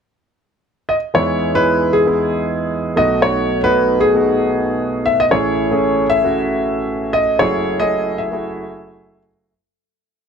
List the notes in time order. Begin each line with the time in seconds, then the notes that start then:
0.89 D#5
1.14 E2 E3 G#3 B3 D#4 E4 C#5
1.54 G#3 B3 D#4 E4 B4
1.93 G#4
2.06 G#3 B3 D#4 E4
2.96 B1 B2 A3 B3 D#4 F#4 D#5
3.22 C#5
3.63 A3 B3 D#4 F#4 B4
4.00 G#4
4.14 A3 B3 D#4 F#4
5.06 E5
5.20 D#5
5.31 A1 A2 A3 C#4 E4 G#4 C#5
5.71 A3 C#4 E4 G#4
6.10 E5
6.23 A3 C#4 E4 F#4
7.13 D#5
7.39 F#1 F#2 A3 E4 F#4 G#4 C#5
7.80 A3 E4 F#4 G#4 D#5
8.18 E5
8.32 A3 E4 F#4 G#4